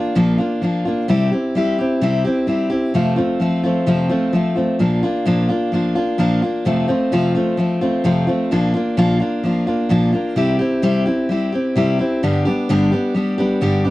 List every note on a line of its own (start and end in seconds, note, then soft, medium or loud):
0.00 0.15 A#3 soft
0.00 0.15 D4 medium
0.00 0.16 F4 medium
0.15 0.39 A#2 medium
0.15 0.39 F3 medium
0.15 0.39 A#3 medium
0.15 0.38 D4 medium
0.15 0.37 F4 medium
0.38 0.61 A#3 soft
0.38 0.62 D4 soft
0.38 0.62 F4 medium
0.62 0.85 F3 medium
0.62 0.85 A#3 medium
0.62 0.86 D4 medium
0.62 0.84 F4 medium
0.85 1.09 A#3 soft
0.85 1.09 D4 soft
0.85 1.08 F4 medium
1.08 1.31 C3 medium
1.08 1.32 G3 medium
1.08 1.32 C4 medium
1.08 1.31 E4 medium
1.08 1.30 G4 medium
1.32 1.55 C4 soft
1.32 1.55 E4 medium
1.32 1.55 G4 medium
1.55 1.78 G3 medium
1.55 1.79 C4 medium
1.55 1.79 E4 medium
1.55 1.77 G4 medium
1.78 2.02 C4 soft
1.78 2.02 E4 soft
1.78 2.01 G4 medium
2.01 2.24 C3 medium
2.01 2.25 G3 medium
2.01 2.25 C4 medium
2.01 2.25 E4 medium
2.01 2.23 G4 medium
2.24 2.47 C4 soft
2.24 2.47 E4 medium
2.24 2.48 G4 medium
2.47 2.70 G3 medium
2.47 2.71 C4 medium
2.47 2.70 E4 medium
2.47 2.69 G4 medium
2.70 2.94 C4 soft
2.70 2.94 E4 medium
2.70 2.93 G4 medium
2.94 3.17 F2 medium
2.94 3.17 C3 medium
2.94 3.17 F3 medium
2.94 3.17 A3 medium
2.94 3.16 C4 medium
2.94 3.15 F4 medium
3.16 3.39 F3 soft
3.16 3.40 A3 medium
3.16 3.40 C4 medium
3.16 3.40 F4 medium
3.40 3.63 F3 medium
3.40 3.64 A3 medium
3.40 3.64 C4 medium
3.40 3.62 F4 medium
3.63 3.86 F3 medium
3.63 3.86 A3 medium
3.63 3.87 C4 medium
3.63 3.87 F4 medium
3.86 4.10 F2 medium
3.86 4.10 C3 medium
3.86 4.10 F3 medium
3.86 4.10 A3 medium
3.86 4.09 C4 medium
3.86 4.08 F4 medium
4.09 4.32 F3 soft
4.09 4.33 A3 medium
4.09 4.33 C4 medium
4.09 4.33 F4 medium
4.33 4.56 F3 medium
4.33 4.56 A3 medium
4.33 4.55 C4 medium
4.33 4.54 F4 medium
4.55 4.79 F3 soft
4.55 4.80 A3 medium
4.55 4.80 C4 soft
4.55 4.79 F4 soft
4.79 5.03 A#2 medium
4.79 5.03 F3 medium
4.79 5.03 A#3 medium
4.79 5.03 D4 medium
4.79 5.01 F4 medium
5.03 5.25 A#3 soft
5.03 5.26 D4 medium
5.03 5.26 F4 medium
5.26 5.49 A#2 medium
5.26 5.49 F3 medium
5.26 5.49 A#3 medium
5.26 5.49 D4 medium
5.26 5.48 F4 medium
5.49 5.72 A#3 soft
5.49 5.73 D4 medium
5.49 5.72 F4 medium
5.72 5.95 F3 medium
5.72 5.96 A#3 medium
5.72 5.96 D4 medium
5.72 5.94 F4 medium
5.95 6.18 A#3 soft
5.95 6.19 D4 medium
5.95 6.19 F4 medium
6.18 6.42 A#2 medium
6.18 6.42 F3 medium
6.18 6.42 A#3 medium
6.18 6.42 D4 loud
6.18 6.41 F4 medium
6.42 6.66 A#3 soft
6.42 6.66 D4 medium
6.42 6.65 F4 medium
6.65 6.88 F2 medium
6.65 6.89 C3 medium
6.65 6.89 F3 medium
6.65 6.88 A3 medium
6.65 6.87 C4 medium
6.65 6.87 F4 medium
6.88 7.11 F3 medium
6.88 7.12 A3 soft
6.88 7.12 C4 medium
6.88 7.11 F4 medium
7.12 7.35 F2 medium
7.12 7.35 C3 medium
7.12 7.35 F3 medium
7.12 7.35 A3 medium
7.12 7.34 C4 medium
7.12 7.33 F4 loud
7.35 7.56 F3 soft
7.35 7.57 A3 medium
7.35 7.58 C4 medium
7.35 7.58 F4 medium
7.57 7.81 F3 medium
7.57 7.81 A3 medium
7.57 7.81 C4 medium
7.57 7.80 F4 medium
7.81 8.04 F3 soft
7.81 8.04 A3 medium
7.81 8.04 C4 medium
7.81 8.04 F4 medium
8.04 8.27 F2 medium
8.04 8.28 C3 medium
8.04 8.28 F3 medium
8.04 8.28 A3 loud
8.04 8.27 C4 medium
8.04 8.26 F4 medium
8.27 8.50 F3 soft
8.27 8.51 A3 medium
8.27 8.51 C4 medium
8.27 8.51 F4 medium
8.51 8.74 A#2 medium
8.51 8.75 F3 medium
8.51 8.75 A#3 medium
8.51 8.74 D4 loud
8.51 8.73 F4 medium
8.74 8.97 A#3 medium
8.74 8.97 D4 medium
8.74 8.97 F4 medium
8.97 9.20 A#2 medium
8.97 9.21 F3 medium
8.97 9.21 A#3 medium
8.97 9.20 D4 medium
8.97 9.19 F4 loud
9.20 9.43 A#3 medium
9.20 9.44 D4 medium
9.20 9.44 F4 medium
9.43 9.67 F3 medium
9.43 9.67 A#3 medium
9.43 9.67 D4 medium
9.43 9.66 F4 medium
9.67 9.89 A#3 soft
9.67 9.90 D4 medium
9.67 9.90 F4 medium
9.89 10.13 A#2 medium
9.89 10.13 F3 medium
9.89 10.13 A#3 medium
9.89 10.13 D4 medium
9.89 10.11 F4 medium
10.13 10.36 A#3 soft
10.13 10.37 D4 soft
10.13 10.36 F4 medium
10.36 10.60 C3 medium
10.36 10.60 G3 medium
10.36 10.60 C4 medium
10.36 10.59 E4 medium
10.36 10.58 G4 medium
10.59 10.82 C4 medium
10.59 10.82 E4 medium
10.59 10.83 G4 medium
10.82 11.06 C3 medium
10.82 11.06 G3 medium
10.82 11.06 C4 medium
10.82 11.06 E4 medium
10.82 11.04 G4 loud
11.06 11.29 C4 soft
11.06 11.30 E4 medium
11.06 11.29 G4 medium
11.29 11.53 G3 medium
11.29 11.53 C4 medium
11.29 11.53 E4 medium
11.29 11.51 G4 medium
11.52 11.75 C4 soft
11.52 11.76 E4 soft
11.52 11.76 G4 medium
11.76 11.99 C3 medium
11.76 12.00 G3 medium
11.76 12.00 C4 medium
11.76 11.99 E4 medium
11.76 11.98 G4 medium
11.99 12.23 C4 soft
11.99 12.23 E4 medium
11.99 12.22 G4 medium
12.23 12.46 G2 medium
12.23 12.46 D3 medium
12.23 12.46 G3 medium
12.23 12.46 B3 medium
12.23 12.45 D4 medium
12.23 12.44 G4 medium
12.45 12.69 G3 soft
12.45 12.69 B3 soft
12.45 12.69 D4 medium
12.45 12.69 G4 medium
12.69 12.92 G2 medium
12.69 12.93 D3 medium
12.69 12.93 G3 medium
12.69 12.93 B3 loud
12.69 12.92 D4 medium
12.69 12.90 G4 medium
12.92 13.13 G3 soft
12.92 13.14 B3 medium
12.92 13.15 D4 medium
12.92 13.15 G4 medium
13.15 13.38 G3 medium
13.15 13.39 B3 medium
13.15 13.38 D4 medium
13.15 13.37 G4 medium
13.38 13.60 G3 medium
13.38 13.61 B3 medium
13.38 13.61 D4 medium
13.38 13.62 G4 medium
13.61 13.85 G2 medium
13.61 13.85 D3 medium
13.61 13.85 G3 medium
13.61 13.85 B3 medium
13.61 13.84 D4 medium
13.61 13.83 G4 medium
13.85 13.90 B3 soft
13.85 13.90 D4 soft
13.85 13.90 G4 medium